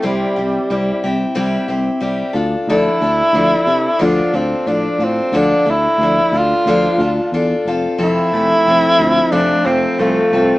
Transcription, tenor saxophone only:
X:1
M:4/4
L:1/8
Q:1/4=90
K:Dm
V:1 name="Tenor saxophone"
G,4 z4 | E4 D C D C | D E2 F3 z2 | E4 D C A,2 |]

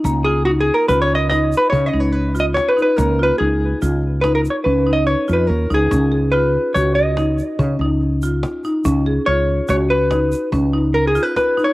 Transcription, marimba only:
X:1
M:7/4
L:1/8
Q:1/4=143
K:Dbmix
V:1 name="Marimba"
B, F E2 F2 E2 D E2 F2 E | B, F E2 F2 E2 D E2 F2 E | D A F2 G2 E2 D E2 F2 E | D A F2 G2 E2 D E2 F2 E |]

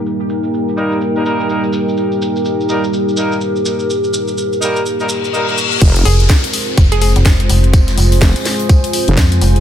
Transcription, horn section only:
X:1
M:4/4
L:1/16
Q:"Swing 16ths" 1/4=125
K:Fm
V:1 name="Horn section"
z6 [G,B,EB]2 z [G,B,EB] [G,B,EB]2 [G,B,EB] z3 | z6 [G,B,EB] z3 [G,B,EB]2 z4 | z6 [G,B,EB]2 z [G,B,EB] z2 [G,B,EB] [G,B,EB] z2 | z16 |
z16 |]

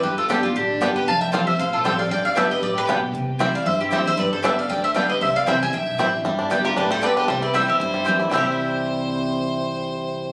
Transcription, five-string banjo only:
X:1
M:4/4
L:1/8
Q:"Swing" 1/4=232
K:C
V:1 name="Five-string banjo"
z2 [G,B,D] z3 [G,B,D] z | z2 [G,CF] z3 [G,CF] z | z2 [G,B,D] z3 [G,B,D] z | z2 [G,CE] z3 [G,CE] z |
z2 [G,B,D] z3 [G,B,D] z | z2 [G,CE] z3 [G,CE] z | G, D G, G D G, D, D | G, E G, G E G, E, E |
[G,CEG]8- | [G,CEG]8 |]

